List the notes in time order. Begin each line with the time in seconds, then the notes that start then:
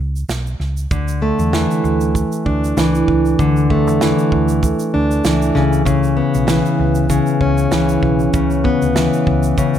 Already playing: C#2
0.16 shaker
0.29 B1, snare, shaker
0.46 shaker
0.60 C#2, snare
0.77 shaker
0.91 D2 D3, kick, shaker
1.08 shaker
1.22 A3
1.39 E2, shaker
1.53 E3, snare, shaker
1.71 shaker
1.84 D2, shaker
2.01 shaker
2.15 kick, shaker
2.32 shaker
2.46 D2 D4, kick
2.64 shaker
2.77 C#2 E3, snare, shaker
2.95 shaker
3.08 C#2, kick
3.25 shaker
3.39 D2 D3, kick, shaker
3.56 shaker
3.70 A3, kick
3.87 E2, shaker
4.01 E3, snare, shaker
4.19 shaker
4.32 D2, kick
4.48 shaker
4.63 kick, shaker
4.79 shaker
4.94 D2 D4
5.11 shaker
5.24 C#2 E3, snare, shaker
5.42 shaker
5.55 C#2 C#3, snare
5.73 shaker
5.85 C#3, kick, shaker
6.03 shaker
6.17 B3
6.34 B1, shaker
6.47 E3, snare, shaker
6.66 shaker
6.79 C#2
6.95 shaker
7.10 C#3, kick, shaker
7.26 shaker
7.41 C#2 C#4, kick
7.58 shaker
7.71 C#2 E3, snare, shaker
7.89 shaker
8.03 B1, kick
8.19 shaker
8.33 C#2 C#3, kick, shaker
8.50 shaker
8.64 B3, kick
8.82 D2, shaker
8.96 E3, snare, shaker
9.13 shaker
9.27 C#2, kick
9.43 shaker
9.58 C#3, kick, shaker
9.74 C#2, shaker